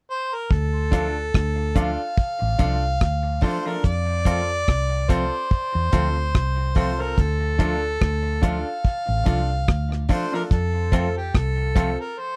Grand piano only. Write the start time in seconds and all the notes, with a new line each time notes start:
0.91 D4 F4 A4
1.75 D4 F4 A4
2.58 D4 F4 A4
3.41 D4 F4 A4
3.65 D4 F4 A4
4.25 C4 F4 A4
5.08 C4 F4 A4
5.92 C4 F4 A4
6.75 C4 F4 A4
6.99 C4 F4 A4
7.58 D4 F4 A4
8.42 D4 F4 A4
9.25 D4 F4 A4
10.09 D4 F4 A4
10.32 D4 F4 A4
10.92 C4 F4 A4
11.75 C4 F4 A4